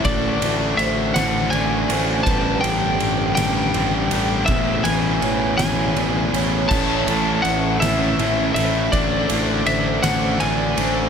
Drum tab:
CC |------|------|------|x-----|
RD |xxxxxx|xxxxxx|xxxxxx|-xxxxx|
SD |---o--|---o--|---o--|---o--|
BD |o-----|o-----|o-----|o-----|

CC |------|
RD |xxxxxx|
SD |---o--|
BD |o-----|